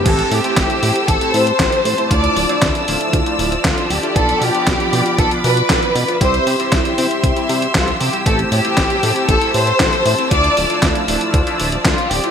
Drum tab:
CC |x---------------|----------------|----------------|----------------|
HH |xxoxxxoxxxoxxxox|xxoxxxoxxxoxxxox|xxoxxxoxxxoxxxox|xxoxxxoxxxoxxxox|
CP |----x-------x---|----x-------x---|----x-------x---|----x-------x---|
SD |----o-------o---|----o-------o---|----o-------o---|----o-------o---|
BD |o---o---o---o---|o---o---o---o---|o---o---o---o---|o---o---o---o---|

CC |----------------|----------------|
HH |xxoxxxoxxxoxxxox|xxoxxxoxxxoxxxox|
CP |----x-------x---|----x-------x---|
SD |----o-------o---|----o-------o---|
BD |o---o---o---o---|o---o---o---o---|